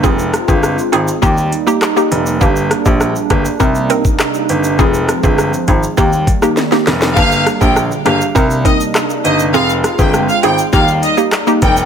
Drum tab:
CC |----------------|----------------|----------------|x---------------|
HH |--x---x---x---x-|--x---x---x---x-|--x---x---x---x-|--x---x---x---x-|
SH |xxxxxxxxxxxxxxxx|xxxxxxxxxxxxxxxx|xxxxxxxxxxxxxxxx|xxxxxxxxxxxxxxxx|
CP |------------x---|------------x---|----------------|------------x---|
SD |--r-r-------r---|--r-r-r-----r---|--r-r------roooo|--r-r-r-----r---|
BD |o--o----o-------|o--o--o-o--o----|o--o--o-o-o-----|o--o----o-o-----|

CC |----------------|
HH |--x---x---x---x-|
SH |xxxxxxxxxxxxxxxx|
CP |------------x---|
SD |--r-r-------r---|
BD |---o----o-----o-|